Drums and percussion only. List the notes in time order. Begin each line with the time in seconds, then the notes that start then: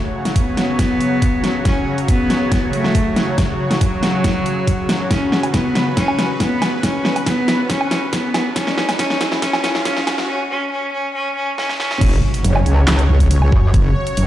0.25 snare, closed hi-hat
0.36 kick, closed hi-hat
0.57 snare, closed hi-hat
0.79 kick, snare, closed hi-hat
1.01 closed hi-hat
1.22 kick, closed hi-hat
1.44 snare, closed hi-hat
1.65 kick, snare, closed hi-hat
1.98 closed hi-hat
2.08 kick, closed hi-hat
2.30 snare, closed hi-hat
2.52 kick, snare, closed hi-hat
2.73 closed hi-hat
2.84 snare
2.95 kick, closed hi-hat
3.16 snare, closed hi-hat
3.38 kick, snare, closed hi-hat
3.71 snare, closed hi-hat
3.81 kick, closed hi-hat
4.03 snare, closed hi-hat
4.24 kick, snare, closed hi-hat
4.46 closed hi-hat
4.67 kick, closed hi-hat
4.89 snare, closed hi-hat
5.11 kick, snare, closed hi-hat
5.32 snare
5.43 closed hi-hat, low woodblock
5.54 kick, snare, closed hi-hat
5.75 snare, closed hi-hat
5.97 kick, snare, closed hi-hat
6.08 low woodblock
6.19 snare, closed hi-hat
6.40 kick, snare, closed hi-hat
6.62 snare, closed hi-hat, low woodblock
6.83 kick, snare, closed hi-hat
7.05 snare
7.16 closed hi-hat, low woodblock
7.26 kick, snare, closed hi-hat
7.48 snare, closed hi-hat
7.70 kick, snare, closed hi-hat
7.81 low woodblock
7.91 snare, closed hi-hat
8.13 kick, snare, closed hi-hat
8.34 snare, closed hi-hat, low woodblock
8.56 kick, snare, closed hi-hat
8.67 snare
8.78 snare
8.89 snare, closed hi-hat, low woodblock
8.99 kick, snare, closed hi-hat
9.10 snare
9.21 snare, closed hi-hat
9.32 snare
9.42 kick, snare, closed hi-hat
9.53 snare, low woodblock
9.64 snare, closed hi-hat
9.75 snare
9.85 kick, snare, closed hi-hat
9.97 snare
10.07 snare, closed hi-hat, low woodblock
10.18 snare
11.58 snare
11.69 snare
11.80 snare
11.91 snare
12.01 kick, closed hi-hat, crash
12.34 closed hi-hat
12.44 closed hi-hat
12.56 low woodblock
12.66 closed hi-hat
12.88 snare, clap, closed hi-hat
12.99 closed hi-hat
13.20 kick, closed hi-hat
13.31 closed hi-hat
13.42 low woodblock
13.52 kick
13.74 kick, closed hi-hat
14.07 closed hi-hat
14.17 closed hi-hat